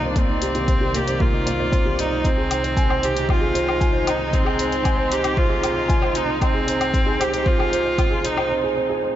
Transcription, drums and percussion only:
0.16 kick, closed hi-hat
0.42 closed hi-hat
0.55 closed hi-hat
0.68 kick, closed hi-hat
0.94 closed hi-hat
1.08 closed hi-hat
1.20 kick
1.47 closed hi-hat
1.72 kick, closed hi-hat
1.99 closed hi-hat
2.24 kick, closed hi-hat
2.51 closed hi-hat, low woodblock
2.64 closed hi-hat
2.77 kick, closed hi-hat
2.90 low woodblock
3.03 closed hi-hat
3.17 closed hi-hat
3.29 kick, low woodblock
3.55 closed hi-hat
3.69 low woodblock
3.81 kick, closed hi-hat
4.07 closed hi-hat, low woodblock
4.33 kick, closed hi-hat
4.46 low woodblock
4.59 closed hi-hat
4.72 closed hi-hat
4.85 kick, closed hi-hat, low woodblock
5.12 closed hi-hat
5.24 closed hi-hat, low woodblock
5.37 kick
5.63 closed hi-hat, low woodblock
5.89 kick, closed hi-hat
6.02 low woodblock
6.15 closed hi-hat
6.41 kick, closed hi-hat, low woodblock
6.68 closed hi-hat
6.81 closed hi-hat, low woodblock
6.94 kick, closed hi-hat
7.21 closed hi-hat, low woodblock
7.34 closed hi-hat
7.46 kick
7.60 low woodblock
7.73 closed hi-hat
7.98 kick, closed hi-hat, low woodblock
8.25 closed hi-hat
8.37 low woodblock

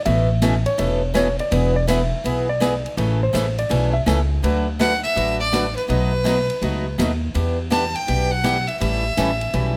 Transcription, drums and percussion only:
0.06 ride
0.42 snare, hi-hat pedal, ride
0.66 ride
0.79 ride
1.15 snare, hi-hat pedal, ride
1.39 ride
1.52 ride
1.88 snare, hi-hat pedal, ride
2.25 ride
2.62 snare, hi-hat pedal, ride
2.86 ride
2.98 ride
3.35 snare, hi-hat pedal, ride
3.58 ride
3.71 ride
4.08 snare, hi-hat pedal, ride
4.44 ride
4.81 snare, hi-hat pedal, ride
5.05 ride
5.17 ride
5.54 snare, hi-hat pedal, ride
5.78 ride
5.90 ride
6.26 snare, hi-hat pedal, ride
6.50 ride
6.62 ride
6.99 snare, hi-hat pedal, ride
7.35 ride
7.72 snare, hi-hat pedal, ride
7.95 ride
8.08 ride
8.44 snare, hi-hat pedal, ride
8.68 ride
8.81 ride
9.17 snare, hi-hat pedal, ride
9.41 ride
9.53 ride

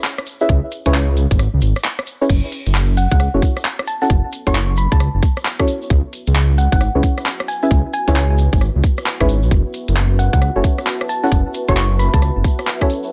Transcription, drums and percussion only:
0.04 clap, closed hi-hat, shaker
0.18 cross-stick, closed hi-hat
0.26 open hi-hat, shaker
0.40 shaker
0.49 kick, closed hi-hat, shaker
0.72 open hi-hat, shaker
0.85 kick, closed hi-hat, shaker
0.94 clap, closed hi-hat, shaker
1.17 open hi-hat, shaker
1.31 kick, closed hi-hat, shaker
1.39 cross-stick, closed hi-hat, shaker
1.61 open hi-hat, shaker
1.76 cross-stick, shaker
1.84 clap, closed hi-hat, shaker
1.99 cross-stick, closed hi-hat
2.06 open hi-hat, shaker
2.22 shaker
2.30 kick, closed hi-hat, crash, shaker
2.52 open hi-hat, shaker
2.66 closed hi-hat, shaker
2.75 clap, closed hi-hat, shaker
2.97 open hi-hat, shaker
3.11 kick, closed hi-hat, shaker
3.20 cross-stick, closed hi-hat, shaker
3.42 kick, open hi-hat, shaker
3.57 cross-stick, shaker
3.65 clap, closed hi-hat, shaker
3.79 cross-stick, closed hi-hat
3.87 open hi-hat, shaker
4.01 shaker
4.10 kick, closed hi-hat, shaker
4.33 open hi-hat, shaker
4.47 kick, closed hi-hat, shaker
4.55 clap, closed hi-hat, shaker
4.77 open hi-hat, shaker
4.91 kick, closed hi-hat, shaker
5.00 cross-stick, closed hi-hat, shaker
5.23 kick, open hi-hat, shaker
5.37 cross-stick, shaker
5.45 clap, closed hi-hat, shaker
5.59 kick, cross-stick, closed hi-hat
5.68 open hi-hat, shaker
5.82 shaker
5.90 kick, closed hi-hat, shaker
6.13 open hi-hat, shaker
6.26 closed hi-hat, shaker
6.36 clap, closed hi-hat, shaker
6.58 open hi-hat, shaker
6.72 kick, closed hi-hat, shaker
6.81 cross-stick, closed hi-hat, shaker
7.03 kick, open hi-hat, shaker
7.18 cross-stick, shaker
7.26 clap, closed hi-hat, shaker
7.40 cross-stick, closed hi-hat
7.48 open hi-hat, shaker
7.63 shaker
7.71 kick, closed hi-hat, shaker
7.93 open hi-hat, shaker
8.08 kick, closed hi-hat, shaker
8.16 clap, closed hi-hat, shaker
8.38 open hi-hat, shaker
8.53 kick, closed hi-hat, shaker
8.61 cross-stick, closed hi-hat, shaker
8.84 kick, open hi-hat, shaker
8.97 cross-stick, shaker
9.06 clap, closed hi-hat, shaker
9.20 kick, cross-stick, closed hi-hat
9.29 open hi-hat, shaker
9.43 shaker
9.51 kick, closed hi-hat, shaker
9.74 open hi-hat, shaker
9.88 closed hi-hat, shaker
9.96 clap, closed hi-hat, shaker
10.19 open hi-hat, shaker
10.33 kick, closed hi-hat, shaker
10.41 cross-stick, closed hi-hat, shaker
10.64 kick, open hi-hat, shaker
10.78 cross-stick, shaker
10.87 clap, closed hi-hat, shaker
11.01 cross-stick, closed hi-hat
11.09 open hi-hat, shaker
11.24 shaker
11.32 kick, closed hi-hat, shaker
11.54 open hi-hat, shaker
11.68 kick, closed hi-hat, shaker
11.77 clap, closed hi-hat
12.00 open hi-hat, shaker
12.14 kick, closed hi-hat, shaker
12.22 cross-stick, closed hi-hat, shaker
12.44 kick, open hi-hat, shaker
12.59 cross-stick, shaker
12.67 clap, closed hi-hat
12.81 kick, cross-stick, closed hi-hat
12.90 open hi-hat, shaker
13.03 shaker

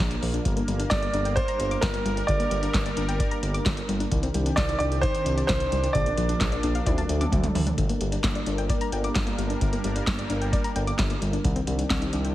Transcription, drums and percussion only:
0.00 closed hi-hat
0.11 closed hi-hat
0.23 open hi-hat
0.34 closed hi-hat
0.45 kick, closed hi-hat
0.57 closed hi-hat
0.68 closed hi-hat
0.80 closed hi-hat
0.91 kick, snare, clap, closed hi-hat
1.03 closed hi-hat
1.14 closed hi-hat
1.25 closed hi-hat
1.37 kick, closed hi-hat
1.48 closed hi-hat
1.60 closed hi-hat
1.71 closed hi-hat
1.82 kick, snare, clap, closed hi-hat
1.94 closed hi-hat
2.06 closed hi-hat
2.17 closed hi-hat
2.28 kick, closed hi-hat
2.40 closed hi-hat
2.51 closed hi-hat
2.63 closed hi-hat
2.74 kick, snare, clap, closed hi-hat
2.86 closed hi-hat
2.97 closed hi-hat
3.09 closed hi-hat
3.20 kick, closed hi-hat
3.31 closed hi-hat
3.43 closed hi-hat
3.54 closed hi-hat
3.66 kick, snare, clap, closed hi-hat
3.77 closed hi-hat
3.89 closed hi-hat
4.00 closed hi-hat
4.12 kick, closed hi-hat
4.23 closed hi-hat
4.34 closed hi-hat
4.46 closed hi-hat
4.57 kick, snare, clap, closed hi-hat
4.69 closed hi-hat
4.80 closed hi-hat
4.92 closed hi-hat
5.03 kick, closed hi-hat
5.15 closed hi-hat
5.26 closed hi-hat
5.38 closed hi-hat
5.49 kick, snare, clap, closed hi-hat
5.60 closed hi-hat
5.72 closed hi-hat
5.84 closed hi-hat
5.95 kick, closed hi-hat
6.06 closed hi-hat
6.17 closed hi-hat
6.29 closed hi-hat
6.41 kick, snare, clap, closed hi-hat
6.52 closed hi-hat
6.63 closed hi-hat
6.75 closed hi-hat
6.86 kick, closed hi-hat, high tom
6.98 closed hi-hat
7.09 closed hi-hat
7.21 closed hi-hat, mid tom
7.32 kick, closed hi-hat, mid tom
7.44 closed hi-hat, mid tom
7.55 floor tom, open hi-hat
7.67 closed hi-hat, floor tom
7.78 kick, closed hi-hat
7.89 closed hi-hat
8.01 closed hi-hat
8.12 closed hi-hat
8.24 kick, snare, clap, closed hi-hat
8.35 closed hi-hat
8.46 closed hi-hat
8.58 closed hi-hat
8.69 kick, closed hi-hat
8.81 closed hi-hat
8.92 closed hi-hat
9.04 closed hi-hat
9.15 kick, snare, clap, closed hi-hat
9.27 closed hi-hat
9.39 closed hi-hat
9.50 closed hi-hat
9.61 kick, closed hi-hat
9.73 closed hi-hat
9.84 closed hi-hat
9.96 closed hi-hat
10.07 kick, snare, clap, closed hi-hat
10.19 closed hi-hat
10.30 closed hi-hat
10.42 closed hi-hat
10.53 kick, closed hi-hat
10.64 closed hi-hat
10.76 closed hi-hat
10.87 closed hi-hat
10.99 kick, snare, clap, closed hi-hat
11.10 closed hi-hat
11.22 closed hi-hat
11.33 closed hi-hat
11.44 kick, closed hi-hat
11.56 closed hi-hat
11.67 closed hi-hat
11.79 closed hi-hat
11.90 kick, snare, clap, closed hi-hat
12.02 closed hi-hat
12.13 closed hi-hat
12.25 closed hi-hat

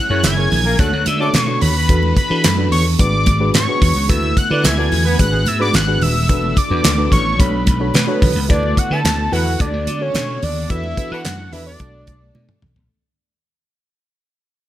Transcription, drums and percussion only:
0.23 snare, clap, closed hi-hat, high conga
0.52 open hi-hat, muted conga, low conga
0.79 kick, closed hi-hat, muted conga, high conga
1.06 closed hi-hat, muted conga, high conga
1.34 snare, clap, closed hi-hat, muted conga, high conga
1.61 open hi-hat, muted conga, low conga
1.89 kick, closed hi-hat, low conga
2.03 high conga
2.17 kick, closed hi-hat, muted conga
2.44 snare, clap, closed hi-hat, muted conga, high conga
2.72 open hi-hat, muted conga, low conga
2.99 kick, closed hi-hat, high conga
3.26 kick, closed hi-hat, muted conga, high conga
3.54 snare, clap, closed hi-hat, high conga
3.82 kick, open hi-hat, low conga
4.09 kick, closed hi-hat, low conga
4.23 high conga
4.37 kick, closed hi-hat
4.64 snare, clap, closed hi-hat, high conga
4.92 open hi-hat, muted conga, low conga
5.19 kick, closed hi-hat, high conga
5.46 closed hi-hat, high conga
5.74 snare, clap, closed hi-hat, muted conga, high conga
6.02 open hi-hat, muted conga, low conga
6.29 kick, closed hi-hat, low conga
6.43 high conga
6.56 kick, closed hi-hat, muted conga
6.84 snare, clap, closed hi-hat, muted conga, high conga
7.12 kick, closed hi-hat, low conga
7.40 kick, closed hi-hat, muted conga, high conga
7.66 kick, closed hi-hat, high conga
7.94 snare, clap, closed hi-hat, muted conga, high conga
8.22 kick, open hi-hat, muted conga, low conga
8.50 kick, closed hi-hat, low conga
8.63 high conga
8.77 kick, closed hi-hat
9.05 snare, clap, closed hi-hat, high conga
9.33 open hi-hat, low conga
9.60 kick, closed hi-hat, muted conga, high conga
9.87 closed hi-hat, high conga
10.14 snare, clap, closed hi-hat, muted conga, high conga
10.42 open hi-hat, muted conga, low conga
10.70 kick, closed hi-hat, muted conga, low conga
10.84 high conga
10.97 kick, closed hi-hat, muted conga
11.25 snare, clap, closed hi-hat, high conga
11.53 open hi-hat, low conga
11.80 kick, closed hi-hat, high conga
12.07 kick, closed hi-hat, high conga
12.35 high tom, muted conga, high conga
12.49 mid tom
12.62 mid tom, low conga
12.76 floor tom

